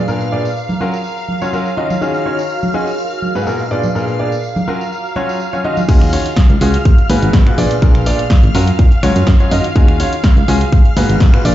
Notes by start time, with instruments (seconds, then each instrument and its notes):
Already playing: ambient pad A#4, string machine F5 F6
0.06 grand piano A#2 B3 D4 G#4 A#4, ambient pad A#5, tambourine
0.21 tambourine
0.32 grand piano A#2 B3 D4 G#4 D5
0.45 tambourine
0.56 tambourine
0.69 tambourine, high conga
0.81 grand piano F#3 C#4 F4 F#4 A#4, ambient pad F#4
0.94 tambourine
1.04 tambourine
1.08 ambient pad C#5 G#5
1.18 tambourine
1.29 high conga
1.41 grand piano F#3 C#4 F4 F#4 C#5, tambourine
1.53 grand piano F#3 C#4 F4 F#4 A#4, tambourine
1.66 tambourine
1.77 grand piano D#3 C#4 F4 F#4 D#5
1.90 tambourine, high conga
2.01 grand piano D#3 C#4 D#4 F4 F#4 G#4, tambourine
2.14 tambourine
2.26 grand piano D#3 C#4 D#4 F4 F#4 C#5
2.39 tambourine
2.49 tambourine
2.62 tambourine, high conga
2.74 grand piano C#4 D#4 F4 F#4 G#4
2.87 tambourine
2.98 tambourine
3.10 tambourine
3.22 high conga
3.35 grand piano G#2 B3 F#4 G#4 B4, tambourine
3.47 grand piano A#2 B3 F#4 G#4 A#4, tambourine
3.59 tambourine
3.71 grand piano A#2 B3 D4 G#4 D5, ambient pad A#4
3.83 tambourine, high conga
3.95 grand piano A#2 B3 D4 G#4 A#4, tambourine
3.99 ambient pad A#5
4.08 tambourine
4.19 grand piano A#2 B3 D4 G#4 D5
4.32 tambourine
4.43 tambourine
4.56 tambourine, high conga
4.68 grand piano F#3 C#4 F4 F#4 A#4
4.81 tambourine
4.92 tambourine
5.05 tambourine
5.16 grand piano F#3 C#4 F4 F#4 C#5, high conga
5.29 tambourine
5.40 tambourine
5.53 grand piano F#3 C#4 F4 F#4 C#5, tambourine
5.64 grand piano D#3 C#4 F4 F#4 D#5
5.77 tambourine, high conga
5.89 fm bass D#2, grand piano D#3 C#4 F4 F#4 G#4, string machine F5 F6, kick, closed hi-hat, crash
6.01 finger snap, closed hi-hat
6.13 grand piano D#3 C#4 F4 F#4 C#5, open hi-hat
6.26 closed hi-hat
6.37 kick, snare, closed hi-hat
6.50 fm bass C#2, closed hi-hat
6.61 fm bass C#2, grand piano C#4 F4 F#4 G#4, open hi-hat
6.74 closed hi-hat
6.85 fm bass G#1, kick, closed hi-hat
6.98 closed hi-hat
7.10 fm bass D#2, grand piano G#2 B3 F#4 G#4 B4, open hi-hat
7.22 fm bass G#1, closed hi-hat
7.33 fm bass G#1, kick, snare, closed hi-hat
7.47 grand piano A#2 B3 F#4 G#4 B4, finger snap, closed hi-hat
7.58 fm bass A#1, grand piano A#2 B3 D4 G#4 D5, open hi-hat
7.71 closed hi-hat
7.82 fm bass A#1, grand piano A#2 B3 D4 G#4 A#4, kick, closed hi-hat
7.95 finger snap, closed hi-hat
8.06 grand piano A#2 B3 D4 G#4 D5, open hi-hat
8.19 closed hi-hat
8.30 kick, snare, closed hi-hat
8.43 fm bass G#1, closed hi-hat
8.55 fm bass F#2, grand piano F#3 C#4 F4 F#4 A#4, open hi-hat
8.67 closed hi-hat
8.79 fm bass A#2, kick, closed hi-hat
8.92 closed hi-hat
9.03 fm bass C#2, grand piano F#3 C#4 F4 F#4 C#5, finger snap, open hi-hat
9.16 fm bass F#2, closed hi-hat
9.27 fm bass F#2, kick, snare, closed hi-hat
9.40 grand piano F#3 C#4 F4 F#4 C#5, closed hi-hat
9.51 fm bass F#2, grand piano D#3 C#4 F4 F#4 D#5, open hi-hat
9.64 closed hi-hat
9.76 fm bass D#2, grand piano D#3 C#4 F4 F#4 G#4, kick, closed hi-hat
9.88 finger snap, closed hi-hat
10.00 grand piano D#3 C#4 F4 F#4 C#5, open hi-hat
10.13 closed hi-hat
10.24 kick, snare, closed hi-hat
10.37 fm bass C#2, closed hi-hat
10.48 fm bass C#2, grand piano C#4 F4 F#4 G#4, open hi-hat
10.61 closed hi-hat
10.72 fm bass G#1, kick, closed hi-hat
10.85 closed hi-hat
10.97 fm bass D#2, grand piano G#2 B3 F#4 G#4 B4, open hi-hat
11.09 fm bass G#1, closed hi-hat
11.20 fm bass G#1, kick, snare, closed hi-hat
11.34 grand piano A#2 B3 F#4 G#4 B4, finger snap, closed hi-hat
11.45 fm bass A#1, grand piano A#2 B3 D4 G#4 D5, open hi-hat